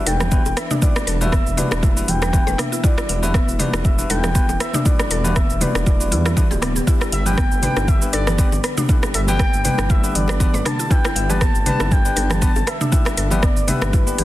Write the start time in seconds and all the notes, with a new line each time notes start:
Already playing: E3 G3 B3 D4 E4 F#4 B4
0.06 E1 A4 G5, open hi-hat, low bongo, shaker
0.20 cross-stick, high bongo, low conga, shaker
0.31 G3 B3 D4 E4 F#4 B4, kick, shaker
0.46 E1, high bongo, shaker
0.57 B4 E5, cross-stick, open hi-hat, shaker
0.71 D4, mid tom, high conga, shaker
0.82 G3 D4 E4 F#4 B4 D5, kick, low bongo, shaker
0.96 cross-stick, high bongo, shaker
1.07 E1 A4, open hi-hat, shaker
1.21 G3 D4 E4 F#4 B4 E5, high conga, low conga, shaker
1.32 B3, kick, cross-stick, shaker
1.47 E1, shaker
1.57 G3 D4 E4 F#4 B4 D5, open hi-hat, mid tom, low bongo, high conga, shaker
1.71 E1, cross-stick, high bongo, low bongo, shaker
1.83 E4 E5, kick, high conga, shaker
1.97 G3 D4 E4 F#4 B4, shaker
2.08 E1 G5, open hi-hat, high conga, low conga, shaker
2.22 B4, cross-stick, high bongo, shaker
2.33 G3 B3 D4 E4 F#4 B4, kick, low conga, shaker
2.47 E1 B4, high bongo, high conga, shaker
2.58 D4 E5, cross-stick, open hi-hat, mid tom, shaker
2.72 E4, shaker
2.83 G3 D4 E4 F#4 B4 D5, kick, low bongo, shaker
2.98 E4, cross-stick, high bongo, shaker
3.09 E1 E5, open hi-hat, shaker
3.23 G3 D4 E4 F#4 B4 E5, high conga, low conga, shaker
3.34 B3, kick, cross-stick, shaker
3.48 E1, shaker
3.59 G3 D4 E4 F#4 B4 D5, open hi-hat, mid tom, low bongo, high conga, shaker
3.73 E1 E4, cross-stick, high bongo, low bongo, shaker
3.85 E5, kick, shaker
3.99 G3 D4 E4 F#4 B4, shaker
4.09 E1 A4 G5, open hi-hat, low bongo, shaker
4.24 cross-stick, high bongo, low conga, shaker
4.35 G3 B3 D4 E4 F#4 B4, kick, shaker
4.49 E1, high bongo, shaker
4.60 B4 E5, cross-stick, open hi-hat, shaker
4.73 D4, mid tom, high conga, shaker
4.85 G3 D4 E4 F#4 B4 D5, kick, low bongo, shaker
4.99 cross-stick, high bongo, shaker
5.11 E1 A4, open hi-hat, shaker
5.24 G3 D4 E4 F#4 B4, high conga, low conga, shaker
5.36 B3 E5, kick, cross-stick, shaker
5.50 E1, shaker
5.61 G3 D4 E4 F#4 B4 D5, open hi-hat, mid tom, low bongo, high conga, shaker
5.75 E1, cross-stick, high bongo, low bongo, shaker
5.86 E4, kick, high conga, shaker
6.00 G3 D4 E4 F#4 B4, shaker
6.11 E2 E4, open hi-hat, high conga, low conga, shaker
6.25 E4, cross-stick, high bongo, shaker
6.37 G3 D4 E4 F#4 B4, kick, low conga, shaker
6.51 D1 G4, high bongo, high conga, shaker
6.62 G3 B3 D4 E4 F#4 D5, cross-stick, open hi-hat, mid tom, shaker
6.76 G4, shaker
6.87 D3 G3 B3 D4 E4 G4 B4, kick, low bongo, shaker
7.01 E4, cross-stick, high bongo, shaker
7.12 G1 E5, open hi-hat, shaker
7.26 G3 B3 D4 G4 B4 G5, high conga, low conga, shaker
7.38 B3, kick, cross-stick, shaker
7.51 G1, shaker
7.62 G3 B3 D4 G4 B4 G5, open hi-hat, mid tom, low bongo, high conga, shaker
7.76 G1 E4, cross-stick, high bongo, low bongo, shaker
7.88 E5, kick, shaker
8.02 G3 B3 D4 G4 B4, shaker
8.13 G1 A4 D5, open hi-hat, low bongo, shaker
8.27 cross-stick, high bongo, low conga, shaker
8.38 G3 B3 D4 G4 B4, kick, shaker
8.52 G1, high bongo, shaker
8.64 B4, cross-stick, open hi-hat, shaker
8.78 D4, mid tom, high conga, shaker
8.89 G3 B3 D4 E4 G4 B4, kick, low bongo, shaker
9.03 cross-stick, high bongo, shaker
9.14 G1 A4 E5, open hi-hat, shaker
9.27 G3 B3 D4 G4 B4 G5, high conga, low conga, shaker
9.39 B3, kick, cross-stick, shaker
9.53 G1, shaker
9.64 G3 B3 D4 G4 B4 G5, open hi-hat, mid tom, low bongo, high conga, shaker
9.78 G1, cross-stick, high bongo, low bongo, shaker
9.89 E4 E5, kick, high conga, shaker
10.04 G3 B3 D4 G4 B4, shaker
10.15 G1 D5, open hi-hat, high conga, low conga, shaker
10.28 B4, cross-stick, high bongo, shaker
10.40 G3 B3 D4 G4 B4, kick, low conga, shaker
10.54 G1 B4, high bongo, high conga, shaker
10.65 D4 A5, cross-stick, open hi-hat, mid tom, shaker
10.79 E4, shaker
10.90 G3 B3 D4 E4 G4 B4 G5, kick, low bongo, shaker
11.04 E4, cross-stick, high bongo, shaker
11.16 G1 E5, open hi-hat, shaker
11.30 G3 B3 D4 G4 B4 A5, high conga, low conga, shaker
11.41 B3, kick, cross-stick, shaker
11.55 G1, shaker
11.66 G3 B3 D4 G4 B4 A5, open hi-hat, mid tom, low bongo, high conga, shaker
11.80 G1 E4, cross-stick, high bongo, low bongo, shaker
11.91 G5, kick, shaker
12.05 G3 B3 D4 G4 B4, shaker
12.16 G1 A4, open hi-hat, low bongo, shaker
12.30 A5, cross-stick, high bongo, low conga, shaker
12.42 G3 B3 D4 G4 B4, kick, shaker
12.56 G1, high bongo, shaker
12.67 B4 E5, cross-stick, open hi-hat, shaker
12.81 D4, mid tom, high conga, shaker
12.92 G3 B3 D4 E4 G4 B4, kick, low bongo, shaker
13.05 cross-stick, high bongo, shaker
13.17 G1 A4, open hi-hat, shaker
13.30 G3 B3 D4 G4 B4, high conga, low conga, shaker
13.43 B3 D5, kick, cross-stick, shaker
13.57 G1, shaker
13.68 G3 B3 D4 G4 B4 E5, open hi-hat, mid tom, low bongo, high conga, shaker
13.82 G1, cross-stick, high bongo, low bongo, shaker
13.93 E4 B4, kick, high conga, shaker
14.07 G3 B3 D4 G4 B4, shaker
14.18 G1 G4, open hi-hat, high conga, low conga, shaker